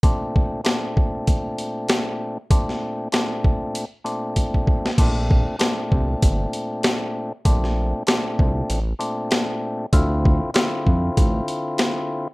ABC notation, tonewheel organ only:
X:1
M:4/4
L:1/16
Q:"Swing 16ths" 1/4=97
K:Bblyd
V:1 name="Tonewheel organ"
[B,,A,CD]4 [B,,A,CD]8- [B,,A,CD]3 z | [B,,A,CD]4 [B,,A,CD]4 z2 [B,,A,CD]6 | [B,,A,CD]4 [B,,A,CD]8- [B,,A,CD]3 z | [B,,A,CD]4 [B,,A,CD]4 z2 [B,,A,CD]6 |
[D,CEF]4 [D,CEF]8- [D,CEF]3 z |]